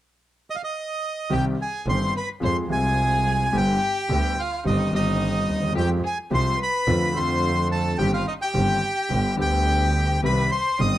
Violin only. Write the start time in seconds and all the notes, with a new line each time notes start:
1.32 G4
1.61 G#4
1.89 C5
2.17 B4
2.43 C5
2.73 G#4
3.56 G4
4.38 F4
4.66 D#4
4.93 D#4
5.75 G4
6.04 G#4
6.32 C5
6.59 B4
7.15 C5
7.71 A4
8.01 G4
8.14 F4
8.28 D#4
8.41 G4
9.38 G4
10.24 B4
10.52 C5
10.81 D#5